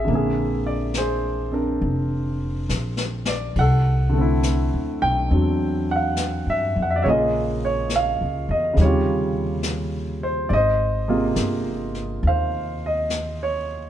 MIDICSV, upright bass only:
0, 0, Header, 1, 2, 480
1, 0, Start_track
1, 0, Tempo, 868307
1, 43, Time_signature, 4, 2, 24, 8
1, 7682, End_track
2, 0, Start_track
2, 0, Title_t, "Upright bass"
2, 0, Program_c, 0, 32
2, 43, Note_on_c, 0, 34, 63
2, 980, Note_off_c, 0, 34, 0
2, 1003, Note_on_c, 0, 29, 60
2, 1463, Note_off_c, 0, 29, 0
2, 1488, Note_on_c, 0, 34, 55
2, 1949, Note_off_c, 0, 34, 0
2, 1969, Note_on_c, 0, 36, 63
2, 2591, Note_off_c, 0, 36, 0
2, 2617, Note_on_c, 0, 38, 44
2, 2764, Note_off_c, 0, 38, 0
2, 2775, Note_on_c, 0, 35, 51
2, 2923, Note_off_c, 0, 35, 0
2, 2934, Note_on_c, 0, 40, 61
2, 3551, Note_off_c, 0, 40, 0
2, 3574, Note_on_c, 0, 43, 45
2, 3722, Note_off_c, 0, 43, 0
2, 3737, Note_on_c, 0, 41, 53
2, 3884, Note_off_c, 0, 41, 0
2, 3901, Note_on_c, 0, 34, 58
2, 4514, Note_off_c, 0, 34, 0
2, 4537, Note_on_c, 0, 37, 47
2, 4683, Note_off_c, 0, 37, 0
2, 4693, Note_on_c, 0, 40, 53
2, 4840, Note_off_c, 0, 40, 0
2, 4847, Note_on_c, 0, 39, 65
2, 5781, Note_off_c, 0, 39, 0
2, 5805, Note_on_c, 0, 32, 63
2, 6260, Note_off_c, 0, 32, 0
2, 6280, Note_on_c, 0, 31, 62
2, 6738, Note_off_c, 0, 31, 0
2, 6760, Note_on_c, 0, 39, 65
2, 7682, Note_off_c, 0, 39, 0
2, 7682, End_track
0, 0, End_of_file